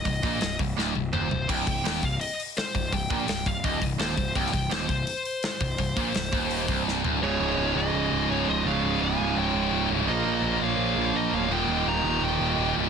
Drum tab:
CC |----------------|x---------------|----------------|----------------|
HH |o-o-o-o---------|o-o-o-o-o-o-o-o-|o---o-o-o-o-o-o-|o-o-o-o-o-o-o-o-|
SD |----o---o-------|----o-------o---|----o-------o---|-o--o-------o---|
T1 |----------o-----|----------------|----------------|----------------|
T2 |------------o---|----------------|----------------|----------------|
FT |--------------o-|----------------|----------------|----------------|
BD |o-o---o---------|o-o---o-------o-|o-o---o-o-o---o-|o-o---o-------o-|

CC |----------------|----------------|----------------|----------------|
HH |o-o-o-o-o-o-----|----------------|----------------|----------------|
SD |----o-------o---|----------------|----------------|----------------|
T1 |----------------|----------------|----------------|----------------|
T2 |----------------|----------------|----------------|----------------|
FT |--------------o-|----------------|----------------|----------------|
BD |o-o---o---o-----|----------------|----------------|----------------|

CC |----------------|
HH |----------------|
SD |----------------|
T1 |----------------|
T2 |----------------|
FT |----------------|
BD |----------------|